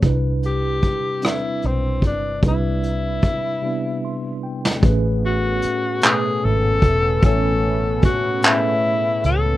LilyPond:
<<
  \new Staff \with { instrumentName = "Tenor saxophone" } { \time 6/8 \key a \major \tempo 4. = 50 r8 g'4 e'8 c'8 d'8 | e'2~ e'8 r8 | r8 fis'4 gis'8 a'4 | a'4 fis'8 e'4 a'8 | }
  \new Staff \with { instrumentName = "Tine electric piano" } { \time 6/8 \key a \major << { r2. | r2 c'''8 g''8 | r2. | r2. | } \\ { <c g d' e' b'>4 r8 <g c' d' e' b'>4 r8 | <c g d' e' b'>4 r8 <c g b d' e'>4 r8 | <a, a cis' gis' b'>4 r8 <b, a cis' b' gis''>4 r8 | <a, a cis' cis'' gis''>4 r8 <a, a cis' gis' b'>4 r8 | } >> }
  \new Staff \with { instrumentName = "Analog synth pad" } { \time 6/8 \key a \major r2. | r2. | <a b cis'>2.~ | <a b cis'>2. | }
  \new Staff \with { instrumentName = "Fingered electric bass" } { \clef bass \time 6/8 \key a \major c,4 r4 b,,8 g,,8 | c,4 r2 | a,,4 r4 gis,,8 e,,8 | a,,4 r4. cis,8 | }
  \new DrumStaff \with { instrumentName = "Drums" } \drummode { \time 6/8 <hh bd>8 hh8 <hh bd>8 <hh ss>8 hh8 <hh bd>8 | <hh bd>8 hh8 <hh bd>8 r4 r16 sn16 | <hh bd>4 hh8 <hc hh>4 <hh bd>8 | <hh bd>4 <hh bd>8 <hc hh>4 hh8 | }
>>